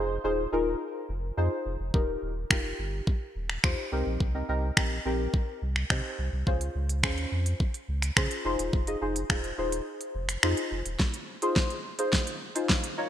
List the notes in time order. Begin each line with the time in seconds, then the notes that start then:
Already playing: F1 D#4 F4 G#4 C5
0.24 D#1 D#4 F4 G#4 C5
0.52 D#1 D#4 F4 G#4 A#4
1.09 F1
1.37 F2 D#4 F4 G#4 C5
1.66 F1
1.80 F1
1.94 D#1 D#4 F4 G4 A#4, kick
2.22 D#1
2.50 F1 D#4 F4 G4 A#4, finger snap, kick
2.79 G1
3.07 kick
3.36 D#1
3.50 finger snap
3.64 D#2 D#4 F4 G4 C5, finger snap, kick
3.92 C2 C4 D#4 G4 A#4
4.06 A#1
4.20 C2, kick
4.34 C4 D#4 G4 A#4
4.49 C2 C4 D#4 G4 A#4
4.77 A#1 C4 D#4 G4 A#4, finger snap, kick
5.05 A#1 C4 D#4 G4 A#4
5.34 kick
5.62 C2
5.76 finger snap
5.90 C3 C4 D#4 G4 C5, finger snap, kick
6.19 C2
6.33 C2
6.47 C#2 C#4 F4 G#4 C5, kick
6.61 closed hi-hat
6.75 C#2
6.89 closed hi-hat
7.03 D#2 C#4 F4 G#4 C5, finger snap, kick
7.18 closed hi-hat
7.32 F2
7.46 closed hi-hat
7.60 kick
7.74 closed hi-hat
7.88 C#2
8.02 finger snap, closed hi-hat
8.16 C#3 C#4 F4 G#4 C5, finger snap, kick
8.31 closed hi-hat
8.45 F1 D#4 F4 G#4 C5
8.59 D#1, closed hi-hat
8.73 F1, kick
8.87 D#4 F4 G#4 D#5, closed hi-hat
9.01 F1 D#4 F4 G#4 C5
9.16 closed hi-hat
9.30 D#1 D#4 F4 G#4 C5, finger snap, kick
9.44 closed hi-hat
9.58 D#1 D#4 F4 G#4 C5
9.72 closed hi-hat
10.01 closed hi-hat
10.15 F1
10.29 finger snap, closed hi-hat
10.43 F2 D#4 F4 G#4 C5, finger snap
10.57 closed hi-hat
10.71 F1
10.86 D#1, closed hi-hat
11.00 kick, snare
11.14 closed hi-hat
11.42 D#4 F4 G#4 C5, closed hi-hat
11.56 kick, snare
11.70 closed hi-hat
11.99 D#4 F4 G#4 C5, closed hi-hat
12.13 kick, snare
12.27 closed hi-hat
12.55 D#4 F4 G#4 C5, closed hi-hat
12.69 kick, snare
12.84 closed hi-hat
12.97 D#4 F4 A#4 C#5